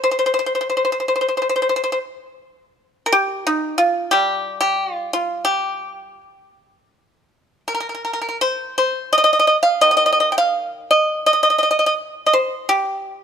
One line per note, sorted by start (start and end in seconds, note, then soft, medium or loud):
0.04 0.10 C5 medium
0.11 0.17 C5 medium
0.19 0.24 C5 medium
0.26 0.32 C5 soft
0.34 0.38 C5 medium
0.39 0.45 C5 soft
0.46 0.53 C5 soft
0.55 0.60 C5 soft
0.61 0.67 C5 soft
0.70 0.75 C5 soft
0.77 0.83 C5 soft
0.85 0.90 C5 soft
0.92 0.97 C5 soft
1.00 1.05 C5 soft
1.08 1.13 C5 soft
1.16 1.20 C5 soft
1.21 1.26 C5 soft
1.29 1.34 C5 soft
1.37 1.41 C5 soft
1.42 1.47 C5 soft
1.49 1.55 C5 medium
1.56 1.61 C5 soft
1.62 1.68 C5 soft
1.69 1.75 C5 soft
1.76 1.83 C5 medium
1.84 1.90 C5 soft
1.92 1.98 C5 medium
3.06 3.12 A#4 medium
3.13 3.44 G4 medium
3.47 3.77 D#4 medium
3.78 4.10 F4 medium
4.11 6.21 G3 medium
4.11 4.59 G4 medium
4.61 4.93 G4 medium
4.93 5.10 F4 medium
5.13 5.47 F4 medium
5.45 7.60 G4 medium
7.68 7.73 A#4 medium
7.75 7.79 A#4 soft
7.80 7.88 A#4 soft
7.89 7.93 A#4 soft
7.95 8.04 A#4 soft
8.05 8.12 A#4 soft
8.13 8.20 A#4 soft
8.22 8.27 A#4 soft
8.29 8.36 A#4 soft
8.41 8.75 C5 medium
8.78 9.11 C5 medium
9.13 9.17 D#5 medium
9.18 9.23 D#5 medium
9.24 9.32 D#5 medium
9.33 9.38 D#5 medium
9.39 9.46 D#5 medium
9.47 9.56 D#5 medium
9.63 9.81 F5 medium
9.81 11.96 D#3 medium
9.81 9.90 D#5 medium
9.91 9.96 D#5 medium
9.97 10.05 D#5 medium
10.06 10.11 D#5 medium
10.13 10.19 D#5 medium
10.20 10.28 D#5 medium
10.32 10.37 G5 medium
10.38 10.88 F5 medium
10.91 11.24 D#5 medium
11.26 11.32 D#5 medium
11.43 11.49 D#5 medium
11.50 11.57 D#5 soft
11.58 11.62 D#5 medium
11.63 11.70 D#5 soft
11.71 11.78 D#5 medium
11.79 11.85 D#5 medium
11.86 11.93 D#5 medium
12.26 12.33 D#5 medium
12.33 12.65 C5 medium
12.69 13.24 G4 medium